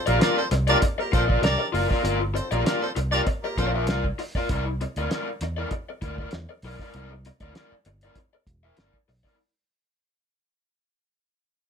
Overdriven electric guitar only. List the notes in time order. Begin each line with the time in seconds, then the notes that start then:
0.06 F4 A#4 D5
0.19 F4 A#4 D5
0.51 muted overdriven electric guitar stroke
0.67 F4 A#4 D5
0.82 muted overdriven electric guitar stroke
0.98 muted overdriven electric guitar stroke
1.12 F4 A#4 D5
1.28 F4 A#4 D5
1.42 muted overdriven electric guitar stroke
1.58 muted overdriven electric guitar stroke
1.73 F4 A#4 D5
1.89 F4 A#4 D5
2.04 F4 A#4 D5
2.20 muted overdriven electric guitar stroke
2.34 muted overdriven electric guitar stroke
2.51 F4 A#4 D5
2.65 F4 A#4 D5
2.96 muted overdriven electric guitar stroke
3.11 F4 A#4 D5
3.26 muted overdriven electric guitar stroke
3.44 muted overdriven electric guitar stroke
3.58 F4 A#4 D5
3.74 F4 A#4 E5
3.87 F4 A#4 D5
4.19 muted overdriven electric guitar stroke
4.35 F4 A#4 D5
4.50 E4 A#4 D5
4.66 muted overdriven electric guitar stroke
4.81 muted overdriven electric guitar stroke
4.98 E4 A#4 D5
5.10 E4 A#4 D5
5.42 muted overdriven electric guitar stroke
5.57 E4 A#4 D5
5.71 muted overdriven electric guitar stroke
5.89 muted overdriven electric guitar stroke
6.02 E4 A#4 D5
6.19 E4 A#4 D5
6.33 muted overdriven electric guitar stroke
6.49 muted overdriven electric guitar stroke
6.65 E4 A#4 D5
6.81 E4 A#4 D5
6.95 E4 A#4 D5
7.12 muted overdriven electric guitar stroke
7.26 muted overdriven electric guitar stroke
7.41 E4 A#4 D5
7.55 E4 A#4 D5
7.86 muted overdriven electric guitar stroke
8.03 E4 A#4 D5
8.17 muted overdriven electric guitar stroke
8.33 muted overdriven electric guitar stroke
8.63 E4 A#4 E5
8.78 E4 A#4 D5
9.08 muted overdriven electric guitar stroke
9.24 E4 A#4 D5